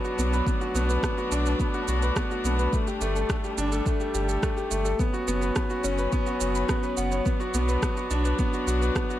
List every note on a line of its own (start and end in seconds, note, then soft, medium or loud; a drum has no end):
0.00 2.69 F#3 medium
0.00 0.18 B3 medium
0.00 0.44 B3 medium
0.00 1.32 D4 loud
0.00 4.96 D4 medium
0.00 0.04 F#4 medium
0.00 0.33 B4 medium
0.04 0.12 F#4 medium
0.04 shaker soft
0.18 0.41 B1 loud
0.18 0.27 B3 medium
0.18 shaker medium
0.33 0.46 B4 medium
0.33 shaker soft
0.46 4.95 A3 medium
0.46 0.60 B3 medium
0.46 kick loud
0.46 shaker soft
0.61 0.74 F#4 medium
0.61 shaker soft
0.75 0.98 B1 loud
0.75 0.83 B3 medium
0.75 shaker medium
0.90 1.03 B4 medium
0.90 shaker soft
1.03 1.17 B3 medium
1.03 kick loud
1.03 cross-stick loud
1.03 shaker soft
1.18 1.31 F#4 medium
1.18 shaker soft
1.31 1.55 B1 medium
1.31 1.45 D4 loud
1.31 shaker medium
1.46 1.59 B4 medium
1.46 shaker soft
1.60 1.74 B3 medium
1.60 kick loud
1.60 shaker soft
1.74 1.87 F#4 medium
1.74 shaker soft
1.88 2.11 B1 loud
1.88 2.02 F#4 medium
1.88 shaker medium
2.02 2.11 B4 medium
2.02 shaker soft
2.16 2.30 B3 medium
2.16 kick loud
2.16 cross-stick loud
2.16 shaker soft
2.31 2.39 F#4 medium
2.31 shaker soft
2.44 2.68 B1 medium
2.44 2.53 B3 medium
2.44 shaker medium
2.59 2.72 B4 medium
2.59 shaker soft
2.73 4.97 G3 medium
2.73 2.87 A3 medium
2.73 kick loud
2.73 shaker soft
2.87 3.01 G4 medium
2.87 shaker soft
3.01 3.24 G1 loud
3.01 3.10 A3 medium
3.01 shaker medium
3.16 3.29 A4 medium
3.16 shaker soft
3.30 3.43 A3 medium
3.30 kick loud
3.30 cross-stick loud
3.30 shaker soft
3.44 3.57 G4 medium
3.44 shaker soft
3.58 3.81 G1 medium
3.58 3.71 D4 loud
3.58 shaker medium
3.72 3.86 A4 medium
3.72 shaker soft
3.86 4.00 A3 medium
3.86 kick loud
3.86 shaker soft
4.00 4.13 G4 medium
4.00 shaker soft
4.15 4.38 G1 loud
4.15 4.28 G4 medium
4.15 shaker medium
4.28 4.37 A4 medium
4.28 shaker soft
4.43 4.56 A3 medium
4.43 kick loud
4.43 cross-stick medium
4.43 shaker soft
4.57 4.65 G4 medium
4.57 shaker soft
4.71 4.94 G1 medium
4.71 4.79 A3 medium
4.71 shaker medium
4.85 4.99 A4 medium
4.85 shaker soft
4.99 9.19 F#3 medium
4.99 9.19 B3 medium
4.99 5.13 B3 medium
4.99 7.23 C#4 medium
4.99 kick loud
4.99 shaker soft
5.14 5.27 F#4 medium
5.14 shaker soft
5.28 5.51 F#1 loud
5.28 5.36 B3 medium
5.28 shaker medium
5.41 5.55 B4 medium
5.41 shaker soft
5.56 5.70 B3 medium
5.56 kick loud
5.56 cross-stick loud
5.56 shaker soft
5.70 5.84 F#4 medium
5.70 shaker soft
5.84 6.07 F#1 medium
5.84 5.98 C#4 loud
5.84 shaker medium
5.98 6.12 B4 medium
5.98 shaker soft
6.12 6.26 B3 medium
6.12 kick loud
6.12 shaker soft
6.27 6.40 F#4 medium
6.27 shaker soft
6.41 6.64 F#1 loud
6.41 6.55 F#4 medium
6.41 shaker medium
6.55 6.63 B5 medium
6.55 shaker soft
6.69 6.83 B3 medium
6.69 kick loud
6.69 cross-stick medium
6.69 shaker soft
6.83 6.92 B4 medium
6.83 shaker soft
6.97 7.21 F#1 medium
6.97 7.06 F#5 medium
6.97 shaker medium
7.12 7.20 C#5 medium
7.12 shaker soft
7.26 7.39 B3 medium
7.26 9.19 D4 medium
7.26 kick loud
7.26 shaker soft
7.40 7.54 F#4 medium
7.40 shaker soft
7.54 7.77 B1 loud
7.54 7.62 B3 medium
7.54 shaker medium
7.68 7.82 B4 medium
7.68 shaker soft
7.83 7.96 B3 medium
7.83 kick loud
7.83 cross-stick medium
7.83 shaker soft
7.97 8.10 F#4 medium
7.97 shaker soft
8.11 8.34 B1 medium
8.11 8.24 D4 loud
8.11 shaker medium
8.25 8.38 B4 medium
8.25 shaker soft
8.39 8.53 B3 medium
8.39 kick loud
8.39 shaker soft
8.53 8.66 F#4 medium
8.53 shaker soft
8.67 8.90 B1 loud
8.67 8.81 F#4 medium
8.67 shaker medium
8.82 8.90 B4 medium
8.82 shaker soft
8.96 9.09 B3 medium
8.96 kick loud
8.96 cross-stick medium
8.96 shaker soft
9.10 9.18 F#4 medium
9.10 shaker soft